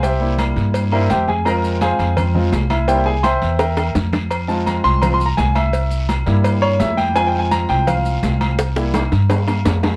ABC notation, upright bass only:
X:1
M:4/4
L:1/8
Q:1/4=168
K:Fm
V:1 name="Upright bass" clef=bass
C,,3 G,,3 F,,2- | F,,3 F,,3 C,,2- | C,,3 =E,,3 F,,2- | F,,3 C,,3 C,,2- |
C,,3 G,,3 F,,2- | F,,3 C,,3 C,,2- | C,,3 G,,3 F,,2 |]